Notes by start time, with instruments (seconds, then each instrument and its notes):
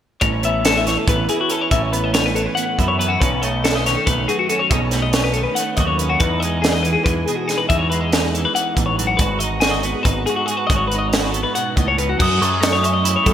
0.21 picked electric bass A1, clean electric guitar A2 C#4 C#5, kick, closed hi-hat
0.43 clean electric guitar B3 E5, closed hi-hat
0.65 clean electric guitar C#4 A4, snare, closed hi-hat
0.78 clean electric guitar E5
0.87 clean electric guitar E3 C#5, snare, closed hi-hat
0.98 clean electric guitar A4
1.08 picked electric bass A1, clean electric guitar B3 B4, kick, closed hi-hat
1.29 clean electric guitar E2 E4 G#4, closed hi-hat
1.41 clean electric guitar F#4
1.50 clean electric guitar C#4 A4, closed hi-hat
1.61 clean electric guitar C#5
1.71 picked electric bass A1, clean electric guitar A2 C#4 E5, kick, closed hi-hat
1.82 clean electric guitar C#5
1.93 clean electric guitar B3 B4, closed hi-hat
2.04 clean electric guitar D#5
2.14 clean electric guitar C#4 C#5, snare, closed hi-hat
2.26 clean electric guitar B4
2.35 clean electric guitar E3 A4, closed hi-hat
2.46 clean electric guitar B4
2.55 clean electric guitar B3 F#5, closed hi-hat
2.78 clean electric guitar E2 E4 D#5, picked electric bass F#2, kick, closed hi-hat
2.88 clean electric guitar C#5
2.99 clean electric guitar B3 B4, closed hi-hat
3.08 clean electric guitar C#4 F#4
3.21 picked electric bass B1, clean electric guitar B2 C#4 B4, kick, closed hi-hat
3.42 clean electric guitar A3 D#5, closed hi-hat
3.64 clean electric guitar B3 A4, snare, closed hi-hat
3.75 clean electric guitar C#4 D#5
3.86 clean electric guitar D#3 C#5, snare, closed hi-hat
3.97 clean electric guitar A4
4.06 picked electric bass B1, clean electric guitar A3 B4, kick, closed hi-hat
4.28 clean electric guitar F#2 F#4 G#4, closed hi-hat
4.39 clean electric guitar F#4
4.49 clean electric guitar C#4 A4, closed hi-hat
4.59 clean electric guitar C#5
4.70 picked electric bass B1, clean electric guitar B2 C#4 D#5, kick, closed hi-hat
4.82 clean electric guitar C#5
4.91 clean electric guitar A3 B4, snare, closed hi-hat
5.03 clean electric guitar D#5
5.13 clean electric guitar C#4 C#5, snare, closed hi-hat
5.24 clean electric guitar B4
5.33 clean electric guitar D#3 A4, closed hi-hat
5.44 clean electric guitar B4
5.55 clean electric guitar F#5, closed hi-hat
5.60 clean electric guitar A3
5.77 picked electric bass D#2, clean electric guitar F#2 F#4 D#5, kick, closed hi-hat
5.87 clean electric guitar C#5
5.97 clean electric guitar C#4 B4, closed hi-hat
6.09 clean electric guitar F#4
6.20 picked electric bass E2, clean electric guitar E2 D#4 B4, kick, closed hi-hat
6.40 clean electric guitar D#5, closed hi-hat
6.45 clean electric guitar G#3
6.62 clean electric guitar G#4, snare, closed hi-hat
6.66 clean electric guitar D#4
6.73 clean electric guitar D#5
6.83 clean electric guitar E3 B4, closed hi-hat
6.93 clean electric guitar G#4
7.04 picked electric bass E2, clean electric guitar G#3 B4, kick, closed hi-hat
7.26 clean electric guitar B2 G#4, closed hi-hat
7.36 clean electric guitar F#4
7.48 clean electric guitar D#4 G#4, snare, closed hi-hat
7.58 clean electric guitar B4
7.69 picked electric bass E2, clean electric guitar E2 D#4 E5, kick, closed hi-hat
7.79 clean electric guitar C#5
7.90 clean electric guitar G#3 B4, closed hi-hat
8.01 clean electric guitar D#5
8.12 clean electric guitar D#4 C#5, snare, closed hi-hat
8.24 clean electric guitar B4
8.34 clean electric guitar E3 A4, closed hi-hat
8.45 clean electric guitar B4
8.55 clean electric guitar F#5, closed hi-hat
8.75 picked electric bass A1, clean electric guitar E2 D#5, kick, closed hi-hat
8.86 clean electric guitar C#5
8.96 clean electric guitar F#2 B4, closed hi-hat
9.07 clean electric guitar F#4
9.17 picked electric bass G#1, clean electric guitar G#2 F#4 B4, kick, closed hi-hat
9.39 clean electric guitar D#5, closed hi-hat
9.44 clean electric guitar D#4
9.60 clean electric guitar F#4 G#4, snare, closed hi-hat
9.71 clean electric guitar D#5
9.83 clean electric guitar B3 B4, closed hi-hat
9.94 clean electric guitar G#4
10.03 picked electric bass G#1, clean electric guitar D#4 B4, kick, closed hi-hat
10.26 clean electric guitar G#2 F#4 G#4, closed hi-hat
10.36 clean electric guitar F#4
10.46 clean electric guitar G#4, closed hi-hat
10.51 clean electric guitar F#4
10.57 clean electric guitar B4
10.67 picked electric bass G#1, clean electric guitar G#2 D#5, kick, closed hi-hat
10.72 clean electric guitar F#4
10.76 clean electric guitar C#5
10.88 clean electric guitar B4, closed hi-hat
10.94 clean electric guitar D#4
10.98 clean electric guitar D#5
11.09 clean electric guitar C#5, closed hi-hat
11.14 clean electric guitar F#4, snare
11.20 clean electric guitar B4
11.31 clean electric guitar A4, closed hi-hat
11.36 clean electric guitar B3
11.43 clean electric guitar B4
11.55 clean electric guitar B2 F#5, closed hi-hat
11.76 picked electric bass C#2, clean electric guitar A2 D#5, kick, closed hi-hat
11.88 clean electric guitar C#5
11.98 clean electric guitar G#2 B4, closed hi-hat
12.09 clean electric guitar F#4
12.17 clean electric guitar F#2 F#4, picked electric bass F#2, kick, crash
12.22 glockenspiel D#6
12.38 picked electric bass F#2, clean electric guitar F#3 A4, glockenspiel C#6
12.42 closed hi-hat
12.50 clean electric guitar G#4
12.60 clean electric guitar A3 A4, snare, closed hi-hat
12.73 clean electric guitar C#5
12.78 glockenspiel D#6
12.82 clean electric guitar C#4 E5, glockenspiel C#6, closed hi-hat
12.94 clean electric guitar D#5
13.04 clean electric guitar E4, closed hi-hat
13.16 clean electric guitar C#5
13.24 picked electric bass F#2, clean electric guitar A3 A4, kick, closed hi-hat